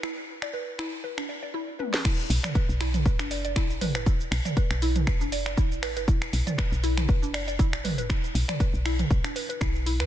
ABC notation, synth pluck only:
X:1
M:4/4
L:1/16
Q:"Swing 16ths" 1/4=119
K:Bphr
V:1 name="Synth pluck"
E z2 d B z E z B D d d E z B B | E z2 d B z E z B D d d E z B B | E z2 d B z E z B D d d E z B B | E z2 d B z E z B D d d E z B B |
E z2 d B z E z B D B B E z E B |]